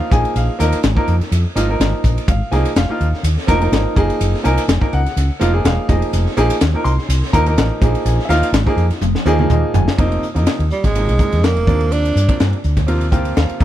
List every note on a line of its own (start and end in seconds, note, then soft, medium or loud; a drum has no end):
0.00 0.11 F4 medium
0.00 0.11 F5 medium
0.10 0.24 A#1 medium
0.10 0.50 F3 medium
0.10 0.50 A#3 medium
0.10 0.51 D#4 medium
0.10 0.51 G#4 medium
0.10 0.35 G#5 loud
0.10 kick medium
0.10 hi-hat pedal medium
0.10 ride medium
0.25 ride medium
0.36 0.48 A#1 medium
0.36 0.81 F5 medium
0.36 hi-hat pedal medium
0.36 ride medium
0.59 0.72 D#2 medium
0.59 0.76 F3 medium
0.59 0.76 A#3 medium
0.59 0.77 D#4 medium
0.59 0.77 A#4 loud
0.59 snare soft
0.59 hi-hat pedal medium
0.59 ride medium
0.72 muted fretless electric bass stroke soft
0.72 ride medium
0.82 0.96 G#1 medium
0.82 0.89 D#4 soft
0.82 0.90 G#4 soft
0.82 snare loud
0.82 hi-hat pedal medium
0.82 ride medium
0.96 1.12 F3 medium
0.96 1.13 A#3 medium
0.96 1.13 D#4 medium
0.96 1.13 A#4 medium
0.96 muted fretless electric bass stroke soft
0.96 kick medium
1.08 1.20 F2 medium
1.08 hi-hat pedal medium
1.08 ride medium
1.20 1.26 D#4 soft
1.20 1.27 A#4 soft
1.20 muted fretless electric bass stroke soft
1.20 snare soft
1.20 ride medium
1.32 1.44 F2 medium
1.32 hi-hat pedal medium
1.32 ride medium
1.55 1.78 G#1 medium
1.55 1.65 F3 medium
1.55 1.65 A#3 medium
1.55 1.65 D#4 medium
1.55 1.65 F4 medium
1.55 2.24 D#5 medium
1.55 hi-hat pedal medium
1.55 ride medium
1.69 2.27 F3 medium
1.69 2.27 A#3 medium
1.69 2.27 D#4 medium
1.69 2.27 A#4 medium
1.80 1.92 G#1 medium
1.80 snare loud
1.80 hi-hat pedal medium
1.80 ride medium
2.04 2.16 A#1 medium
2.04 kick medium
2.04 hi-hat pedal medium
2.04 ride medium
2.18 ride medium
2.28 2.40 G#1 medium
2.28 2.52 F5 medium
2.28 kick loud
2.28 hi-hat pedal medium
2.28 ride medium
2.51 2.64 C2 medium
2.51 2.69 F3 medium
2.51 2.70 A#3 medium
2.51 2.70 D#4 medium
2.51 2.70 G#4 medium
2.51 2.75 G#5 medium
2.51 snare soft
2.51 hi-hat pedal medium
2.51 ride medium
2.65 muted fretless electric bass stroke soft
2.65 ride medium
2.76 2.88 F1 medium
2.76 2.82 D#4 soft
2.76 2.83 F4 soft
2.76 3.21 F5 medium
2.76 snare loud
2.76 hi-hat pedal medium
2.76 ride medium
2.89 3.05 F3 medium
2.89 3.05 A#3 medium
2.89 3.06 D#4 medium
2.89 3.06 F4 medium
3.00 3.12 D#2 medium
3.00 hi-hat pedal medium
3.00 ride medium
3.12 3.19 D#4 soft
3.12 3.20 A#4 soft
3.12 muted fretless electric bass stroke soft
3.12 snare soft
3.23 3.36 D#2 medium
3.23 hi-hat pedal medium
3.23 ride medium
3.38 snare soft
3.47 3.71 F1 medium
3.47 3.57 F3 loud
3.47 3.57 A#3 loud
3.47 3.57 D#4 loud
3.47 3.57 A#4 loud
3.47 kick medium
3.47 hi-hat pedal medium
3.47 ride medium
3.60 3.94 F3 medium
3.60 3.94 A#3 medium
3.60 3.95 D#4 medium
3.60 3.96 A#4 medium
3.60 ride medium
3.72 3.84 G#1 medium
3.72 snare medium
3.72 hi-hat pedal medium
3.72 ride medium
3.95 4.09 F#1 medium
3.95 4.35 F3 medium
3.95 4.35 A#3 medium
3.95 4.36 D#4 medium
3.95 4.36 G#4 loud
3.95 kick medium
3.95 hi-hat pedal medium
3.95 ride medium
4.10 ride medium
4.21 4.33 F#1 medium
4.21 hi-hat pedal medium
4.21 ride medium
4.34 snare soft
4.43 4.57 C2 medium
4.43 4.61 F3 loud
4.43 4.61 A#3 medium
4.43 4.62 D#4 medium
4.43 4.62 A#4 loud
4.43 4.89 G#5 medium
4.43 hi-hat pedal medium
4.43 ride medium
4.57 muted fretless electric bass stroke soft
4.57 ride medium
4.68 4.81 F1 loud
4.68 4.75 D#4 soft
4.68 4.76 G#4 soft
4.68 snare loud
4.68 hi-hat pedal medium
4.68 ride medium
4.80 4.97 F3 medium
4.80 4.97 A#3 medium
4.80 4.98 D#4 medium
4.80 4.98 A#4 medium
4.80 kick medium
4.93 5.05 C#2 medium
4.93 5.61 F#5 medium
4.93 hi-hat pedal medium
4.93 ride soft
5.05 5.11 D#4 soft
5.05 5.12 G#4 soft
5.05 muted fretless electric bass stroke soft
5.05 snare soft
5.05 ride medium
5.16 5.29 C#2 medium
5.16 hi-hat pedal medium
5.16 ride medium
5.40 5.64 F1 medium
5.40 5.49 F3 loud
5.40 5.50 A#3 medium
5.40 5.50 D#4 medium
5.40 5.50 F4 loud
5.40 hi-hat pedal medium
5.40 ride medium
5.52 5.87 F3 medium
5.52 5.87 A#3 medium
5.52 5.88 D#4 medium
5.52 5.88 G#4 medium
5.65 5.77 E1 medium
5.65 5.89 F5 medium
5.65 snare loud
5.65 hi-hat pedal medium
5.65 ride medium
5.88 6.01 F1 medium
5.88 6.28 F3 medium
5.88 6.28 A#3 medium
5.88 6.28 D#4 medium
5.88 6.29 G#4 medium
5.88 6.12 D#5 medium
5.88 kick medium
5.88 hi-hat pedal medium
5.88 ride medium
6.02 ride medium
6.13 6.25 F1 medium
6.13 hi-hat pedal medium
6.13 ride medium
6.27 snare soft
6.37 6.49 A#1 medium
6.37 6.54 F3 loud
6.37 6.54 A#3 loud
6.37 6.55 D#4 loud
6.37 6.55 G#4 loud
6.37 hi-hat pedal medium
6.37 ride medium
6.50 muted fretless electric bass stroke soft
6.50 ride medium
6.61 6.74 D#2 medium
6.61 snare loud
6.61 hi-hat pedal medium
6.61 ride medium
6.74 6.90 F3 medium
6.74 6.91 A#3 medium
6.74 6.91 D#4 medium
6.74 6.91 A#4 medium
6.74 muted fretless electric bass stroke soft
6.84 6.97 C2 medium
6.84 7.30 C6 medium
6.84 hi-hat pedal medium
6.84 ride medium
6.97 7.03 D#4 soft
6.97 7.04 G#4 soft
6.97 muted fretless electric bass stroke soft
6.97 snare soft
7.09 7.21 C2 loud
7.09 hi-hat pedal medium
7.09 ride medium
7.23 snare soft
7.33 7.56 D#2 medium
7.33 7.42 F3 medium
7.33 7.42 A#3 medium
7.33 7.43 D#4 medium
7.33 7.43 A#4 loud
7.33 8.01 A#5 medium
7.33 kick medium
7.33 hi-hat pedal medium
7.33 ride medium
7.46 7.79 F3 medium
7.46 7.80 A#3 medium
7.46 7.81 D#4 medium
7.46 7.82 A#4 medium
7.46 ride medium
7.57 7.70 A1 medium
7.57 snare loud
7.57 hi-hat pedal medium
7.57 ride medium
7.81 7.94 A#1 medium
7.81 8.20 F3 medium
7.81 8.21 A#3 medium
7.81 8.21 D#4 medium
7.81 8.21 G#4 medium
7.81 kick medium
7.81 hi-hat pedal medium
7.81 ride medium
7.95 ride medium
8.05 8.18 A#1 loud
8.05 8.29 G#5 medium
8.05 hi-hat pedal medium
8.05 ride medium
8.19 snare soft
8.25 8.47 F3 medium
8.25 8.28 E5 medium
8.29 8.41 D#2 medium
8.29 8.47 A#3 medium
8.29 8.47 D#4 medium
8.29 8.47 F4 loud
8.29 8.44 F5 loud
8.29 snare soft
8.29 hi-hat pedal medium
8.29 ride medium
8.42 muted fretless electric bass stroke soft
8.42 ride medium
8.52 8.65 G#1 medium
8.52 8.61 G#4 soft
8.52 snare loud
8.52 hi-hat pedal medium
8.52 ride medium
8.66 8.83 F3 medium
8.66 8.83 A#3 medium
8.66 8.83 D#4 medium
8.66 8.83 G#4 loud
8.66 kick medium
8.77 8.89 F2 medium
8.77 hi-hat pedal medium
8.77 ride soft
8.90 8.96 D#4 soft
8.90 8.97 F4 soft
8.90 muted fretless electric bass stroke soft
8.90 snare soft
8.90 ride medium
9.01 9.14 F1 medium
9.01 hi-hat pedal medium
9.01 high tom medium
9.15 snare medium
9.25 9.49 D#2 medium
9.25 9.35 F3 loud
9.25 9.35 A#3 loud
9.25 9.36 D#4 loud
9.25 9.36 G#4 loud
9.25 hi-hat pedal medium
9.39 9.96 F3 medium
9.39 9.97 A#3 medium
9.39 9.97 D#4 medium
9.39 9.98 G#4 loud
9.39 mid tom medium
9.50 9.62 D#2 loud
9.50 9.73 D#5 medium
9.50 hi-hat pedal medium
9.50 mid tom medium
9.74 9.86 F1 medium
9.74 9.97 G#5 medium
9.74 floor tom loud
9.74 hi-hat pedal medium
9.88 snare medium
9.97 10.21 F1 medium
9.97 10.23 C3 loud
9.97 10.23 F3 medium
9.97 10.24 A#3 medium
9.97 10.24 D#4 loud
9.97 kick medium
9.97 ride medium
10.12 ride medium
10.22 muted fretless electric bass stroke soft
10.22 hi-hat pedal medium
10.34 10.46 F2 medium
10.34 10.60 C3 medium
10.34 10.60 F3 medium
10.34 10.60 A#3 medium
10.34 10.61 D#4 medium
10.34 ride medium
10.47 snare loud
10.47 ride medium
10.59 10.70 D#2 medium
10.59 ride medium
10.70 10.86 G3 medium
10.70 10.77 A#3 soft
10.70 10.78 F4 soft
10.70 hi-hat pedal medium
10.84 11.09 G#1 medium
10.84 11.46 G#3 medium
10.84 kick medium
10.84 snare soft
10.84 ride medium
10.95 11.12 C3 medium
10.95 11.12 F3 medium
10.95 11.13 A#3 medium
10.95 11.13 D#4 medium
10.95 ride medium
11.08 11.18 C2 medium
11.08 ride medium
11.19 11.64 C3 medium
11.19 11.65 F3 medium
11.19 11.66 A#3 medium
11.19 11.68 D#4 medium
11.19 kick medium
11.19 hi-hat pedal medium
11.32 11.55 F2 medium
11.32 snare soft
11.32 ride medium
11.44 11.94 A#3 medium
11.44 snare loud
11.44 ride medium
11.56 11.67 F1 medium
11.56 ride medium
11.66 12.13 D#2 medium
11.66 12.15 C3 medium
11.66 12.15 F3 medium
11.66 12.16 A#3 medium
11.66 12.16 D4 medium
11.66 kick loud
11.66 hi-hat pedal medium
11.80 ride soft
11.92 12.40 D4 medium
11.92 ride medium
12.05 ride medium
12.16 12.28 G2 medium
12.16 hi-hat pedal medium
12.27 12.53 C3 medium
12.27 12.54 F3 medium
12.27 12.54 A#3 medium
12.27 12.54 D4 medium
12.27 kick medium
12.27 ride medium
12.40 12.52 G2 medium
12.40 snare loud
12.40 ride medium
12.53 ride soft
12.64 12.88 D2 medium
12.64 12.70 A#3 soft
12.64 12.71 D4 soft
12.64 hi-hat pedal medium
12.77 kick medium
12.77 snare soft
12.77 ride soft
12.87 13.12 D#2 medium
12.87 13.05 C3 medium
12.87 13.05 F3 medium
12.87 13.05 A#3 medium
12.87 13.05 F4 medium
12.87 ride medium
13.01 ride medium
13.11 13.35 D2 medium
13.11 13.58 C3 medium
13.11 13.59 F3 medium
13.11 13.59 A#3 medium
13.11 13.61 F4 medium
13.11 13.34 G5 medium
13.11 kick medium
13.11 hi-hat pedal medium
13.25 ride medium
13.36 13.49 D#2 medium
13.36 13.64 F5 medium
13.36 snare medium
13.36 ride medium
13.49 ride medium
13.60 13.64 F2 medium
13.60 13.64 C3 medium
13.60 13.64 F3 medium
13.60 13.64 A#3 medium
13.60 kick medium
13.60 hi-hat pedal medium